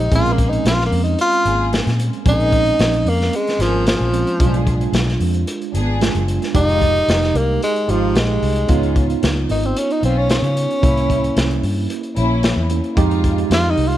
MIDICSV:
0, 0, Header, 1, 6, 480
1, 0, Start_track
1, 0, Key_signature, -4, "minor"
1, 0, Tempo, 535714
1, 107, Time_signature, 4, 2, 24, 8
1, 12523, End_track
2, 0, Start_track
2, 0, Title_t, "String section"
2, 0, Program_c, 0, 48
2, 92, Note_on_c, 0, 58, 71
2, 97, Note_on_c, 0, 68, 83
2, 579, Note_off_c, 0, 58, 0
2, 581, Note_off_c, 0, 68, 0
2, 1294, Note_on_c, 0, 58, 75
2, 1294, Note_on_c, 0, 68, 90
2, 1663, Note_off_c, 0, 58, 0
2, 1663, Note_off_c, 0, 68, 0
2, 2008, Note_on_c, 0, 58, 70
2, 2008, Note_on_c, 0, 68, 84
2, 2496, Note_off_c, 0, 58, 0
2, 2496, Note_off_c, 0, 68, 0
2, 3224, Note_on_c, 0, 68, 82
2, 3226, Note_on_c, 0, 58, 80
2, 3588, Note_off_c, 0, 68, 0
2, 3589, Note_off_c, 0, 58, 0
2, 3940, Note_on_c, 0, 59, 77
2, 3941, Note_on_c, 0, 68, 79
2, 3944, Note_on_c, 0, 62, 69
2, 4423, Note_off_c, 0, 59, 0
2, 4423, Note_off_c, 0, 68, 0
2, 4424, Note_off_c, 0, 62, 0
2, 5142, Note_on_c, 0, 59, 89
2, 5145, Note_on_c, 0, 62, 77
2, 5146, Note_on_c, 0, 68, 99
2, 5507, Note_off_c, 0, 59, 0
2, 5509, Note_off_c, 0, 62, 0
2, 5509, Note_off_c, 0, 68, 0
2, 5865, Note_on_c, 0, 63, 69
2, 5867, Note_on_c, 0, 56, 74
2, 5869, Note_on_c, 0, 65, 83
2, 6345, Note_off_c, 0, 63, 0
2, 6346, Note_off_c, 0, 56, 0
2, 6347, Note_off_c, 0, 65, 0
2, 7059, Note_on_c, 0, 56, 71
2, 7064, Note_on_c, 0, 63, 67
2, 7068, Note_on_c, 0, 65, 78
2, 7426, Note_off_c, 0, 56, 0
2, 7428, Note_off_c, 0, 63, 0
2, 7430, Note_off_c, 0, 65, 0
2, 7770, Note_on_c, 0, 61, 68
2, 7774, Note_on_c, 0, 65, 77
2, 7776, Note_on_c, 0, 59, 76
2, 8258, Note_off_c, 0, 61, 0
2, 8260, Note_off_c, 0, 65, 0
2, 8261, Note_off_c, 0, 59, 0
2, 8969, Note_on_c, 0, 59, 77
2, 8971, Note_on_c, 0, 65, 82
2, 8975, Note_on_c, 0, 61, 77
2, 9341, Note_off_c, 0, 59, 0
2, 9342, Note_off_c, 0, 65, 0
2, 9343, Note_off_c, 0, 61, 0
2, 9691, Note_on_c, 0, 64, 90
2, 9692, Note_on_c, 0, 61, 66
2, 9695, Note_on_c, 0, 58, 74
2, 10178, Note_off_c, 0, 61, 0
2, 10178, Note_off_c, 0, 64, 0
2, 10180, Note_off_c, 0, 58, 0
2, 10894, Note_on_c, 0, 64, 104
2, 10897, Note_on_c, 0, 58, 91
2, 10902, Note_on_c, 0, 61, 85
2, 11262, Note_off_c, 0, 64, 0
2, 11263, Note_off_c, 0, 58, 0
2, 11266, Note_off_c, 0, 61, 0
2, 11607, Note_on_c, 0, 63, 81
2, 11608, Note_on_c, 0, 65, 103
2, 11614, Note_on_c, 0, 56, 89
2, 12094, Note_off_c, 0, 63, 0
2, 12094, Note_off_c, 0, 65, 0
2, 12097, Note_off_c, 0, 56, 0
2, 12523, End_track
3, 0, Start_track
3, 0, Title_t, "Tenor saxophone"
3, 0, Program_c, 1, 66
3, 0, Note_on_c, 1, 63, 81
3, 110, Note_off_c, 1, 63, 0
3, 136, Note_on_c, 1, 65, 91
3, 288, Note_on_c, 1, 58, 78
3, 301, Note_off_c, 1, 65, 0
3, 445, Note_on_c, 1, 63, 69
3, 459, Note_off_c, 1, 58, 0
3, 591, Note_off_c, 1, 63, 0
3, 606, Note_on_c, 1, 65, 89
3, 751, Note_off_c, 1, 65, 0
3, 769, Note_on_c, 1, 58, 73
3, 913, Note_off_c, 1, 58, 0
3, 929, Note_on_c, 1, 63, 75
3, 1073, Note_off_c, 1, 63, 0
3, 1085, Note_on_c, 1, 65, 104
3, 1541, Note_off_c, 1, 65, 0
3, 2047, Note_on_c, 1, 63, 115
3, 2766, Note_on_c, 1, 58, 87
3, 2780, Note_off_c, 1, 63, 0
3, 3004, Note_on_c, 1, 56, 90
3, 3017, Note_off_c, 1, 58, 0
3, 3241, Note_on_c, 1, 53, 90
3, 3254, Note_off_c, 1, 56, 0
3, 3466, Note_off_c, 1, 53, 0
3, 3478, Note_on_c, 1, 53, 82
3, 4403, Note_off_c, 1, 53, 0
3, 5880, Note_on_c, 1, 63, 117
3, 6601, Note_on_c, 1, 58, 93
3, 6614, Note_off_c, 1, 63, 0
3, 6826, Note_off_c, 1, 58, 0
3, 6842, Note_on_c, 1, 56, 97
3, 7083, Note_on_c, 1, 53, 86
3, 7097, Note_off_c, 1, 56, 0
3, 7326, Note_on_c, 1, 56, 85
3, 7339, Note_off_c, 1, 53, 0
3, 8247, Note_off_c, 1, 56, 0
3, 8522, Note_on_c, 1, 63, 80
3, 8652, Note_on_c, 1, 60, 74
3, 8666, Note_off_c, 1, 63, 0
3, 8763, Note_on_c, 1, 61, 88
3, 8776, Note_off_c, 1, 60, 0
3, 8886, Note_on_c, 1, 63, 81
3, 8900, Note_off_c, 1, 61, 0
3, 8987, Note_off_c, 1, 63, 0
3, 9005, Note_on_c, 1, 60, 79
3, 9122, Note_on_c, 1, 61, 86
3, 9135, Note_off_c, 1, 60, 0
3, 9224, Note_off_c, 1, 61, 0
3, 9233, Note_on_c, 1, 61, 89
3, 10632, Note_off_c, 1, 61, 0
3, 12127, Note_on_c, 1, 65, 105
3, 12281, Note_on_c, 1, 63, 91
3, 12295, Note_off_c, 1, 65, 0
3, 12436, Note_on_c, 1, 65, 78
3, 12449, Note_off_c, 1, 63, 0
3, 12523, Note_off_c, 1, 65, 0
3, 12523, End_track
4, 0, Start_track
4, 0, Title_t, "Tine electric piano"
4, 0, Program_c, 2, 4
4, 0, Note_on_c, 2, 63, 42
4, 0, Note_on_c, 2, 67, 49
4, 100, Note_on_c, 2, 56, 66
4, 101, Note_on_c, 2, 60, 57
4, 105, Note_off_c, 2, 63, 0
4, 105, Note_off_c, 2, 67, 0
4, 107, Note_on_c, 2, 61, 70
4, 1986, Note_off_c, 2, 56, 0
4, 1987, Note_off_c, 2, 60, 0
4, 1989, Note_off_c, 2, 61, 0
4, 2018, Note_on_c, 2, 56, 64
4, 2023, Note_on_c, 2, 60, 57
4, 2027, Note_on_c, 2, 61, 75
4, 3668, Note_off_c, 2, 56, 0
4, 3670, Note_off_c, 2, 60, 0
4, 3672, Note_off_c, 2, 61, 0
4, 3699, Note_on_c, 2, 56, 42
4, 3701, Note_on_c, 2, 60, 42
4, 3704, Note_on_c, 2, 61, 48
4, 3930, Note_off_c, 2, 56, 0
4, 3941, Note_on_c, 2, 56, 61
4, 3943, Note_off_c, 2, 60, 0
4, 3944, Note_off_c, 2, 61, 0
4, 3944, Note_on_c, 2, 62, 58
4, 3949, Note_on_c, 2, 65, 72
4, 5354, Note_off_c, 2, 56, 0
4, 5356, Note_off_c, 2, 62, 0
4, 5358, Note_off_c, 2, 65, 0
4, 5387, Note_on_c, 2, 56, 56
4, 5390, Note_on_c, 2, 62, 53
4, 5393, Note_on_c, 2, 65, 57
4, 5850, Note_off_c, 2, 56, 0
4, 5860, Note_on_c, 2, 56, 64
4, 5865, Note_on_c, 2, 63, 59
4, 5868, Note_off_c, 2, 62, 0
4, 5869, Note_off_c, 2, 65, 0
4, 5871, Note_on_c, 2, 67, 79
4, 7039, Note_off_c, 2, 56, 0
4, 7042, Note_off_c, 2, 63, 0
4, 7044, Note_off_c, 2, 67, 0
4, 7059, Note_on_c, 2, 56, 52
4, 7063, Note_on_c, 2, 63, 42
4, 7063, Note_on_c, 2, 67, 55
4, 7773, Note_off_c, 2, 63, 0
4, 7778, Note_on_c, 2, 59, 63
4, 7782, Note_off_c, 2, 56, 0
4, 7784, Note_off_c, 2, 67, 0
4, 7784, Note_on_c, 2, 63, 58
4, 7786, Note_on_c, 2, 65, 71
4, 9665, Note_off_c, 2, 59, 0
4, 9668, Note_off_c, 2, 63, 0
4, 9669, Note_off_c, 2, 65, 0
4, 9695, Note_on_c, 2, 58, 66
4, 9702, Note_on_c, 2, 61, 59
4, 9705, Note_on_c, 2, 64, 71
4, 11344, Note_off_c, 2, 58, 0
4, 11348, Note_off_c, 2, 61, 0
4, 11349, Note_off_c, 2, 64, 0
4, 11386, Note_on_c, 2, 58, 54
4, 11386, Note_on_c, 2, 61, 50
4, 11391, Note_on_c, 2, 64, 57
4, 11623, Note_on_c, 2, 56, 85
4, 11624, Note_off_c, 2, 58, 0
4, 11624, Note_off_c, 2, 61, 0
4, 11625, Note_on_c, 2, 63, 75
4, 11626, Note_off_c, 2, 64, 0
4, 11627, Note_on_c, 2, 67, 85
4, 12523, Note_off_c, 2, 56, 0
4, 12523, Note_off_c, 2, 63, 0
4, 12523, Note_off_c, 2, 67, 0
4, 12523, End_track
5, 0, Start_track
5, 0, Title_t, "Fingered electric bass"
5, 0, Program_c, 3, 33
5, 106, Note_on_c, 3, 34, 90
5, 513, Note_off_c, 3, 34, 0
5, 579, Note_on_c, 3, 34, 84
5, 785, Note_off_c, 3, 34, 0
5, 821, Note_on_c, 3, 41, 90
5, 1026, Note_off_c, 3, 41, 0
5, 1301, Note_on_c, 3, 32, 73
5, 1611, Note_off_c, 3, 32, 0
5, 1672, Note_on_c, 3, 46, 90
5, 1874, Note_off_c, 3, 46, 0
5, 2023, Note_on_c, 3, 34, 96
5, 2431, Note_off_c, 3, 34, 0
5, 2503, Note_on_c, 3, 34, 87
5, 2708, Note_off_c, 3, 34, 0
5, 2733, Note_on_c, 3, 41, 82
5, 2942, Note_off_c, 3, 41, 0
5, 3215, Note_on_c, 3, 32, 81
5, 3528, Note_off_c, 3, 32, 0
5, 3585, Note_on_c, 3, 34, 87
5, 3790, Note_off_c, 3, 34, 0
5, 3940, Note_on_c, 3, 35, 93
5, 4349, Note_off_c, 3, 35, 0
5, 4413, Note_on_c, 3, 35, 95
5, 4622, Note_off_c, 3, 35, 0
5, 4660, Note_on_c, 3, 41, 86
5, 4866, Note_off_c, 3, 41, 0
5, 5144, Note_on_c, 3, 32, 86
5, 5453, Note_off_c, 3, 32, 0
5, 5508, Note_on_c, 3, 30, 90
5, 5712, Note_off_c, 3, 30, 0
5, 5864, Note_on_c, 3, 29, 90
5, 6272, Note_off_c, 3, 29, 0
5, 6345, Note_on_c, 3, 29, 91
5, 6549, Note_off_c, 3, 29, 0
5, 6577, Note_on_c, 3, 36, 96
5, 6784, Note_off_c, 3, 36, 0
5, 7063, Note_on_c, 3, 32, 76
5, 7280, Note_off_c, 3, 32, 0
5, 7301, Note_on_c, 3, 34, 76
5, 7519, Note_off_c, 3, 34, 0
5, 7546, Note_on_c, 3, 36, 81
5, 7762, Note_off_c, 3, 36, 0
5, 7783, Note_on_c, 3, 37, 98
5, 8192, Note_off_c, 3, 37, 0
5, 8270, Note_on_c, 3, 37, 80
5, 8472, Note_off_c, 3, 37, 0
5, 8509, Note_on_c, 3, 32, 86
5, 8711, Note_off_c, 3, 32, 0
5, 8983, Note_on_c, 3, 35, 75
5, 9293, Note_off_c, 3, 35, 0
5, 9336, Note_on_c, 3, 49, 92
5, 9545, Note_off_c, 3, 49, 0
5, 9703, Note_on_c, 3, 36, 93
5, 10111, Note_off_c, 3, 36, 0
5, 10181, Note_on_c, 3, 36, 86
5, 10386, Note_off_c, 3, 36, 0
5, 10419, Note_on_c, 3, 43, 90
5, 10625, Note_off_c, 3, 43, 0
5, 10904, Note_on_c, 3, 34, 84
5, 11212, Note_off_c, 3, 34, 0
5, 11257, Note_on_c, 3, 40, 92
5, 11465, Note_off_c, 3, 40, 0
5, 11624, Note_on_c, 3, 41, 100
5, 12030, Note_off_c, 3, 41, 0
5, 12095, Note_on_c, 3, 41, 96
5, 12301, Note_off_c, 3, 41, 0
5, 12339, Note_on_c, 3, 36, 91
5, 12523, Note_off_c, 3, 36, 0
5, 12523, End_track
6, 0, Start_track
6, 0, Title_t, "Drums"
6, 104, Note_on_c, 9, 36, 100
6, 106, Note_on_c, 9, 42, 84
6, 194, Note_off_c, 9, 36, 0
6, 195, Note_off_c, 9, 42, 0
6, 231, Note_on_c, 9, 42, 39
6, 320, Note_off_c, 9, 42, 0
6, 344, Note_on_c, 9, 36, 75
6, 344, Note_on_c, 9, 42, 62
6, 433, Note_off_c, 9, 36, 0
6, 433, Note_off_c, 9, 42, 0
6, 472, Note_on_c, 9, 42, 38
6, 562, Note_off_c, 9, 42, 0
6, 588, Note_on_c, 9, 42, 85
6, 598, Note_on_c, 9, 38, 103
6, 677, Note_off_c, 9, 42, 0
6, 688, Note_off_c, 9, 38, 0
6, 726, Note_on_c, 9, 38, 32
6, 815, Note_off_c, 9, 38, 0
6, 827, Note_on_c, 9, 46, 65
6, 917, Note_off_c, 9, 46, 0
6, 949, Note_on_c, 9, 42, 35
6, 1039, Note_off_c, 9, 42, 0
6, 1063, Note_on_c, 9, 42, 79
6, 1153, Note_off_c, 9, 42, 0
6, 1188, Note_on_c, 9, 42, 36
6, 1277, Note_off_c, 9, 42, 0
6, 1304, Note_on_c, 9, 42, 59
6, 1394, Note_off_c, 9, 42, 0
6, 1548, Note_on_c, 9, 42, 67
6, 1559, Note_on_c, 9, 38, 91
6, 1638, Note_off_c, 9, 42, 0
6, 1649, Note_off_c, 9, 38, 0
6, 1676, Note_on_c, 9, 42, 37
6, 1686, Note_on_c, 9, 38, 33
6, 1765, Note_off_c, 9, 42, 0
6, 1776, Note_off_c, 9, 38, 0
6, 1788, Note_on_c, 9, 42, 69
6, 1878, Note_off_c, 9, 42, 0
6, 1910, Note_on_c, 9, 42, 35
6, 1999, Note_off_c, 9, 42, 0
6, 2023, Note_on_c, 9, 36, 109
6, 2023, Note_on_c, 9, 42, 80
6, 2112, Note_off_c, 9, 36, 0
6, 2112, Note_off_c, 9, 42, 0
6, 2151, Note_on_c, 9, 42, 34
6, 2240, Note_off_c, 9, 42, 0
6, 2262, Note_on_c, 9, 36, 75
6, 2263, Note_on_c, 9, 42, 50
6, 2352, Note_off_c, 9, 36, 0
6, 2352, Note_off_c, 9, 42, 0
6, 2386, Note_on_c, 9, 42, 38
6, 2475, Note_off_c, 9, 42, 0
6, 2503, Note_on_c, 9, 42, 72
6, 2513, Note_on_c, 9, 38, 103
6, 2592, Note_off_c, 9, 42, 0
6, 2603, Note_off_c, 9, 38, 0
6, 2630, Note_on_c, 9, 42, 37
6, 2719, Note_off_c, 9, 42, 0
6, 2745, Note_on_c, 9, 46, 65
6, 2835, Note_off_c, 9, 46, 0
6, 2879, Note_on_c, 9, 38, 34
6, 2969, Note_off_c, 9, 38, 0
6, 2985, Note_on_c, 9, 42, 76
6, 3075, Note_off_c, 9, 42, 0
6, 3112, Note_on_c, 9, 42, 34
6, 3123, Note_on_c, 9, 38, 31
6, 3202, Note_off_c, 9, 42, 0
6, 3213, Note_off_c, 9, 38, 0
6, 3224, Note_on_c, 9, 42, 60
6, 3235, Note_on_c, 9, 38, 33
6, 3314, Note_off_c, 9, 42, 0
6, 3325, Note_off_c, 9, 38, 0
6, 3464, Note_on_c, 9, 42, 81
6, 3475, Note_on_c, 9, 38, 105
6, 3554, Note_off_c, 9, 42, 0
6, 3564, Note_off_c, 9, 38, 0
6, 3706, Note_on_c, 9, 42, 65
6, 3796, Note_off_c, 9, 42, 0
6, 3827, Note_on_c, 9, 42, 38
6, 3917, Note_off_c, 9, 42, 0
6, 3943, Note_on_c, 9, 36, 116
6, 3945, Note_on_c, 9, 42, 87
6, 4032, Note_off_c, 9, 36, 0
6, 4035, Note_off_c, 9, 42, 0
6, 4067, Note_on_c, 9, 42, 41
6, 4157, Note_off_c, 9, 42, 0
6, 4182, Note_on_c, 9, 36, 71
6, 4183, Note_on_c, 9, 42, 60
6, 4271, Note_off_c, 9, 36, 0
6, 4273, Note_off_c, 9, 42, 0
6, 4309, Note_on_c, 9, 42, 39
6, 4399, Note_off_c, 9, 42, 0
6, 4422, Note_on_c, 9, 42, 78
6, 4433, Note_on_c, 9, 38, 93
6, 4511, Note_off_c, 9, 42, 0
6, 4522, Note_off_c, 9, 38, 0
6, 4558, Note_on_c, 9, 38, 30
6, 4648, Note_off_c, 9, 38, 0
6, 4664, Note_on_c, 9, 46, 66
6, 4753, Note_off_c, 9, 46, 0
6, 4787, Note_on_c, 9, 42, 39
6, 4877, Note_off_c, 9, 42, 0
6, 4905, Note_on_c, 9, 42, 96
6, 4994, Note_off_c, 9, 42, 0
6, 5032, Note_on_c, 9, 42, 36
6, 5122, Note_off_c, 9, 42, 0
6, 5149, Note_on_c, 9, 42, 61
6, 5239, Note_off_c, 9, 42, 0
6, 5388, Note_on_c, 9, 42, 77
6, 5399, Note_on_c, 9, 38, 93
6, 5478, Note_off_c, 9, 42, 0
6, 5489, Note_off_c, 9, 38, 0
6, 5510, Note_on_c, 9, 42, 39
6, 5599, Note_off_c, 9, 42, 0
6, 5629, Note_on_c, 9, 42, 64
6, 5719, Note_off_c, 9, 42, 0
6, 5753, Note_on_c, 9, 42, 40
6, 5764, Note_on_c, 9, 38, 33
6, 5843, Note_off_c, 9, 42, 0
6, 5853, Note_off_c, 9, 38, 0
6, 5865, Note_on_c, 9, 42, 90
6, 5866, Note_on_c, 9, 36, 118
6, 5955, Note_off_c, 9, 36, 0
6, 5955, Note_off_c, 9, 42, 0
6, 5993, Note_on_c, 9, 42, 35
6, 6083, Note_off_c, 9, 42, 0
6, 6107, Note_on_c, 9, 36, 82
6, 6109, Note_on_c, 9, 42, 59
6, 6196, Note_off_c, 9, 36, 0
6, 6199, Note_off_c, 9, 42, 0
6, 6235, Note_on_c, 9, 42, 38
6, 6324, Note_off_c, 9, 42, 0
6, 6348, Note_on_c, 9, 42, 74
6, 6359, Note_on_c, 9, 38, 105
6, 6438, Note_off_c, 9, 42, 0
6, 6448, Note_off_c, 9, 38, 0
6, 6475, Note_on_c, 9, 42, 33
6, 6485, Note_on_c, 9, 38, 33
6, 6564, Note_off_c, 9, 42, 0
6, 6575, Note_off_c, 9, 38, 0
6, 6589, Note_on_c, 9, 42, 58
6, 6678, Note_off_c, 9, 42, 0
6, 6832, Note_on_c, 9, 42, 76
6, 6922, Note_off_c, 9, 42, 0
6, 6954, Note_on_c, 9, 42, 34
6, 7044, Note_off_c, 9, 42, 0
6, 7068, Note_on_c, 9, 42, 55
6, 7158, Note_off_c, 9, 42, 0
6, 7306, Note_on_c, 9, 42, 74
6, 7317, Note_on_c, 9, 38, 104
6, 7396, Note_off_c, 9, 42, 0
6, 7407, Note_off_c, 9, 38, 0
6, 7550, Note_on_c, 9, 46, 85
6, 7640, Note_off_c, 9, 46, 0
6, 7669, Note_on_c, 9, 42, 39
6, 7759, Note_off_c, 9, 42, 0
6, 7783, Note_on_c, 9, 42, 84
6, 7786, Note_on_c, 9, 36, 118
6, 7872, Note_off_c, 9, 42, 0
6, 7876, Note_off_c, 9, 36, 0
6, 7914, Note_on_c, 9, 42, 36
6, 8004, Note_off_c, 9, 42, 0
6, 8027, Note_on_c, 9, 36, 77
6, 8027, Note_on_c, 9, 42, 59
6, 8117, Note_off_c, 9, 36, 0
6, 8117, Note_off_c, 9, 42, 0
6, 8153, Note_on_c, 9, 42, 42
6, 8242, Note_off_c, 9, 42, 0
6, 8268, Note_on_c, 9, 42, 80
6, 8279, Note_on_c, 9, 38, 94
6, 8357, Note_off_c, 9, 42, 0
6, 8368, Note_off_c, 9, 38, 0
6, 8506, Note_on_c, 9, 46, 67
6, 8596, Note_off_c, 9, 46, 0
6, 8631, Note_on_c, 9, 42, 38
6, 8721, Note_off_c, 9, 42, 0
6, 8749, Note_on_c, 9, 42, 92
6, 8839, Note_off_c, 9, 42, 0
6, 8874, Note_on_c, 9, 42, 37
6, 8963, Note_off_c, 9, 42, 0
6, 8987, Note_on_c, 9, 42, 62
6, 9076, Note_off_c, 9, 42, 0
6, 9223, Note_on_c, 9, 42, 81
6, 9234, Note_on_c, 9, 38, 95
6, 9313, Note_off_c, 9, 42, 0
6, 9324, Note_off_c, 9, 38, 0
6, 9350, Note_on_c, 9, 42, 37
6, 9440, Note_off_c, 9, 42, 0
6, 9468, Note_on_c, 9, 42, 65
6, 9558, Note_off_c, 9, 42, 0
6, 9591, Note_on_c, 9, 42, 35
6, 9681, Note_off_c, 9, 42, 0
6, 9705, Note_on_c, 9, 36, 116
6, 9710, Note_on_c, 9, 42, 81
6, 9794, Note_off_c, 9, 36, 0
6, 9799, Note_off_c, 9, 42, 0
6, 9832, Note_on_c, 9, 42, 37
6, 9921, Note_off_c, 9, 42, 0
6, 9944, Note_on_c, 9, 36, 80
6, 9949, Note_on_c, 9, 42, 59
6, 10034, Note_off_c, 9, 36, 0
6, 10038, Note_off_c, 9, 42, 0
6, 10072, Note_on_c, 9, 42, 40
6, 10162, Note_off_c, 9, 42, 0
6, 10183, Note_on_c, 9, 42, 82
6, 10194, Note_on_c, 9, 38, 100
6, 10273, Note_off_c, 9, 42, 0
6, 10284, Note_off_c, 9, 38, 0
6, 10311, Note_on_c, 9, 42, 39
6, 10400, Note_off_c, 9, 42, 0
6, 10423, Note_on_c, 9, 46, 67
6, 10513, Note_off_c, 9, 46, 0
6, 10663, Note_on_c, 9, 42, 86
6, 10752, Note_off_c, 9, 42, 0
6, 10782, Note_on_c, 9, 42, 33
6, 10871, Note_off_c, 9, 42, 0
6, 10899, Note_on_c, 9, 42, 57
6, 10989, Note_off_c, 9, 42, 0
6, 11138, Note_on_c, 9, 42, 76
6, 11148, Note_on_c, 9, 38, 104
6, 11227, Note_off_c, 9, 42, 0
6, 11238, Note_off_c, 9, 38, 0
6, 11377, Note_on_c, 9, 42, 64
6, 11466, Note_off_c, 9, 42, 0
6, 11504, Note_on_c, 9, 42, 33
6, 11594, Note_off_c, 9, 42, 0
6, 11621, Note_on_c, 9, 36, 115
6, 11622, Note_on_c, 9, 42, 77
6, 11710, Note_off_c, 9, 36, 0
6, 11711, Note_off_c, 9, 42, 0
6, 11749, Note_on_c, 9, 42, 39
6, 11838, Note_off_c, 9, 42, 0
6, 11863, Note_on_c, 9, 36, 78
6, 11865, Note_on_c, 9, 42, 59
6, 11953, Note_off_c, 9, 36, 0
6, 11955, Note_off_c, 9, 42, 0
6, 11991, Note_on_c, 9, 42, 39
6, 12080, Note_off_c, 9, 42, 0
6, 12104, Note_on_c, 9, 42, 83
6, 12115, Note_on_c, 9, 38, 110
6, 12194, Note_off_c, 9, 42, 0
6, 12205, Note_off_c, 9, 38, 0
6, 12341, Note_on_c, 9, 46, 65
6, 12431, Note_off_c, 9, 46, 0
6, 12469, Note_on_c, 9, 42, 38
6, 12523, Note_off_c, 9, 42, 0
6, 12523, End_track
0, 0, End_of_file